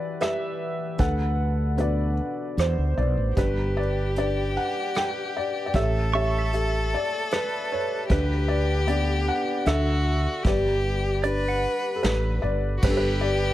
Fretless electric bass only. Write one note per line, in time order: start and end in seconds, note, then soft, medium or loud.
0.99 2.19 D2 medium
2.57 2.75 E2 medium
2.78 2.95 D2 medium
2.97 3.15 B1 medium
3.17 3.35 A1 medium
3.37 4.57 G1 medium
5.74 6.93 A1 medium
8.10 9.28 D2 medium
9.66 10.26 D2 medium
10.45 11.65 G1 medium
12.04 12.39 A1 medium
12.43 12.79 G1 medium
12.83 13.54 G1 medium